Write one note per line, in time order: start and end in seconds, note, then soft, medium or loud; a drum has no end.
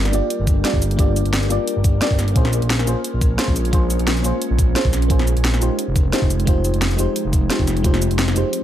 0.00 0.12 G1 medium
0.00 2.32 G3 medium
0.00 0.11 A#3 loud
0.00 0.12 D4 medium
0.00 2.32 D4 medium
0.00 0.13 F4 medium
0.00 0.28 F4 medium
0.00 0.14 G4 medium
0.00 5.75 A#4 medium
0.00 0.15 D5 loud
0.05 snare medium
0.05 shaker soft
0.11 0.21 G1 medium
0.11 0.62 A#3 medium
0.11 0.62 D4 medium
0.11 0.62 F4 medium
0.11 0.63 G4 medium
0.11 0.63 D5 loud
0.11 closed hi-hat medium
0.11 shaker medium
0.30 2.34 G4 medium
0.30 closed hi-hat medium
0.40 0.63 G1 medium
0.47 kick loud
0.47 closed hi-hat medium
0.47 shaker medium
0.64 0.95 A#3 medium
0.64 0.96 D4 medium
0.64 0.97 F4 medium
0.64 0.97 G4 medium
0.64 0.97 D5 loud
0.64 snare loud
0.64 closed hi-hat medium
0.74 0.97 G1 medium
0.74 kick medium
0.82 closed hi-hat medium
0.82 shaker medium
0.91 closed hi-hat soft
0.97 1.24 G1 loud
0.97 1.47 A#3 loud
0.97 1.48 D4 medium
0.97 1.48 F4 medium
0.97 1.49 G4 medium
0.97 1.49 D5 loud
0.97 kick loud
0.97 closed hi-hat medium
1.16 closed hi-hat medium
1.16 shaker medium
1.25 1.49 G1 medium
1.25 closed hi-hat soft
1.33 snare loud
1.33 closed hi-hat medium
1.43 shaker soft
1.48 1.58 G1 medium
1.48 1.99 A#3 medium
1.48 1.99 D4 medium
1.48 2.00 F4 medium
1.48 2.00 G4 medium
1.48 2.00 D5 loud
1.48 closed hi-hat medium
1.48 shaker medium
1.68 closed hi-hat medium
1.76 2.00 G1 medium
1.84 kick loud
1.84 closed hi-hat medium
1.84 shaker medium
2.01 2.33 A#3 medium
2.01 2.34 D4 medium
2.01 2.34 F4 medium
2.01 2.34 G4 medium
2.01 2.34 D5 loud
2.01 snare loud
2.01 closed hi-hat medium
2.11 2.35 G1 medium
2.11 kick medium
2.19 snare soft
2.19 closed hi-hat medium
2.19 shaker medium
2.28 closed hi-hat soft
2.34 2.61 A#1 loud
2.34 5.75 G#3 medium
2.34 2.84 A#3 loud
2.34 2.85 C#4 medium
2.34 5.75 C#4 medium
2.34 2.85 F4 medium
2.34 5.75 F4 medium
2.34 2.86 G#4 medium
2.34 2.86 C5 loud
2.34 kick loud
2.34 closed hi-hat medium
2.45 snare medium
2.53 closed hi-hat medium
2.53 shaker medium
2.62 2.86 A#1 medium
2.62 closed hi-hat soft
2.70 snare loud
2.70 closed hi-hat medium
2.79 snare medium
2.79 shaker soft
2.85 2.95 A#1 medium
2.85 3.36 A#3 medium
2.85 3.36 C#4 medium
2.85 3.37 F4 medium
2.85 3.37 G#4 medium
2.85 3.38 C5 loud
2.85 closed hi-hat medium
2.85 shaker medium
3.04 closed hi-hat medium
3.14 3.37 A#1 medium
3.21 kick loud
3.21 closed hi-hat medium
3.21 shaker medium
3.37 3.70 A#3 medium
3.37 3.71 C#4 medium
3.37 3.71 F4 medium
3.37 3.71 G#4 medium
3.37 3.71 C5 loud
3.37 snare loud
3.37 closed hi-hat medium
3.48 3.72 A#1 medium
3.48 kick medium
3.56 closed hi-hat medium
3.56 shaker medium
3.65 closed hi-hat soft
3.71 3.98 A#1 loud
3.71 4.21 A#3 medium
3.71 4.22 C#4 medium
3.71 4.22 F4 medium
3.71 4.23 G#4 medium
3.71 4.23 C5 loud
3.71 kick loud
3.71 closed hi-hat medium
3.90 closed hi-hat medium
3.90 shaker medium
3.99 4.23 A#1 medium
3.99 closed hi-hat soft
4.07 snare loud
4.07 closed hi-hat medium
4.17 shaker soft
4.23 4.33 A#1 medium
4.23 4.73 A#3 medium
4.23 4.73 C#4 medium
4.23 4.74 F4 medium
4.23 4.74 G#4 medium
4.23 4.75 C5 loud
4.23 closed hi-hat medium
4.23 shaker medium
4.42 closed hi-hat medium
4.51 4.75 A#1 medium
4.59 kick loud
4.59 closed hi-hat medium
4.59 shaker medium
4.75 5.07 A#3 medium
4.75 5.08 C#4 medium
4.75 5.08 F4 medium
4.75 5.08 G#4 medium
4.75 5.09 C5 loud
4.75 snare loud
4.75 closed hi-hat medium
4.85 5.09 A#1 medium
4.85 kick medium
4.93 snare soft
4.93 closed hi-hat medium
4.93 shaker medium
5.02 closed hi-hat soft
5.08 5.35 A#1 loud
5.08 5.59 A#3 loud
5.08 5.59 C#4 medium
5.08 5.60 F4 medium
5.08 5.60 G#4 medium
5.08 5.60 C5 loud
5.08 kick loud
5.08 closed hi-hat medium
5.19 snare medium
5.27 closed hi-hat medium
5.27 shaker medium
5.36 5.60 A#1 medium
5.36 closed hi-hat soft
5.45 snare loud
5.45 closed hi-hat medium
5.54 snare medium
5.54 shaker soft
5.59 5.70 A#1 medium
5.59 6.10 G#3 medium
5.59 6.10 D#4 medium
5.59 6.11 F4 medium
5.59 6.11 G4 medium
5.59 6.12 C5 loud
5.59 closed hi-hat medium
5.59 shaker medium
5.79 8.63 F3 medium
5.79 8.63 G#3 loud
5.79 8.63 C4 medium
5.79 8.63 D#4 medium
5.79 closed hi-hat medium
5.88 6.12 F1 medium
5.96 kick loud
5.96 closed hi-hat medium
5.96 shaker medium
6.12 6.44 G#3 medium
6.12 6.45 D#4 medium
6.12 6.45 F4 medium
6.12 6.46 G4 medium
6.12 6.46 C5 loud
6.12 snare loud
6.12 closed hi-hat medium
6.22 6.46 F1 medium
6.22 kick medium
6.30 closed hi-hat medium
6.30 shaker medium
6.40 closed hi-hat soft
6.45 6.72 F1 loud
6.45 6.95 G#3 loud
6.45 6.96 D#4 medium
6.45 6.97 F4 medium
6.45 6.97 G4 medium
6.45 6.98 C5 loud
6.45 kick loud
6.45 closed hi-hat loud
6.65 closed hi-hat medium
6.65 shaker medium
6.74 6.97 F1 medium
6.74 closed hi-hat soft
6.82 snare loud
6.82 closed hi-hat loud
6.91 shaker soft
6.97 7.07 F1 medium
6.97 7.47 G#3 medium
6.97 7.48 D#4 medium
6.97 7.48 F4 medium
6.97 7.49 G4 medium
6.97 7.49 C5 loud
6.97 closed hi-hat medium
6.97 shaker medium
7.16 closed hi-hat loud
7.25 7.49 F1 medium
7.33 kick loud
7.33 closed hi-hat medium
7.33 shaker medium
7.49 7.81 G#3 medium
7.49 7.82 D#4 medium
7.49 7.82 F4 medium
7.49 7.83 G4 medium
7.49 7.83 C5 loud
7.49 snare loud
7.49 closed hi-hat medium
7.59 7.83 F1 medium
7.59 kick medium
7.67 snare soft
7.67 closed hi-hat medium
7.67 shaker medium
7.77 closed hi-hat soft
7.83 8.09 F1 loud
7.83 8.33 G#3 loud
7.83 8.33 D#4 medium
7.83 8.34 F4 medium
7.83 8.34 G4 medium
7.83 8.35 C5 loud
7.83 kick loud
7.83 closed hi-hat loud
7.94 snare medium
7.94 closed hi-hat soft
8.02 closed hi-hat medium
8.02 shaker medium
8.11 8.35 F1 medium
8.11 closed hi-hat soft
8.19 snare loud
8.19 closed hi-hat medium
8.28 snare medium
8.28 shaker soft
8.34 8.44 F1 medium
8.34 8.63 G#3 medium
8.34 8.63 D#4 medium
8.34 8.63 F4 medium
8.34 8.63 G4 medium
8.34 8.63 C5 loud
8.34 closed hi-hat medium
8.34 shaker medium
8.53 closed hi-hat loud